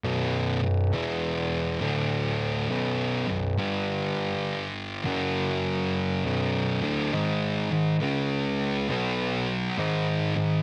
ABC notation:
X:1
M:4/4
L:1/8
Q:"Swing" 1/4=68
K:Bdor
V:1 name="Distorted electric guitar" clef=bass
[B,,,F,,B,,] [B,,,F,,] [E,,B,,E,]2 [D,,A,,D,]2 [B,,,F,,B,,] [B,,,F,,] | [=G,,D,=G,]3 [F,,C,F,]3 [B,,,F,,B,,] [D,,A,,D,] | [G,,^D,G,] [G,,D,] [C,G,C]2 [B,,F,B,]2 [G,,D,G,] [G,,D,] |]
V:2 name="Distorted electric guitar" clef=bass
[B,,,F,,B,,] [B,,,F,,] [E,,B,,E,]2 [D,,A,,D,]2 [B,,,F,,B,,] [B,,,F,,] | [=G,,D,=G,]3 [F,,C,F,]3 [B,,,F,,B,,] [D,,A,,D,] | [G,,^D,G,] [G,,D,] [C,G,C]2 [B,,F,B,]2 [G,,D,G,] [G,,D,] |]
V:3 name="Bassoon" clef=bass
B,,, B,,, E,,2 D,,2 B,,, B,,, | =G,,2 z F,,3 B,,, D,, | G,, G,, C,,2 B,,, z G,, G,, |]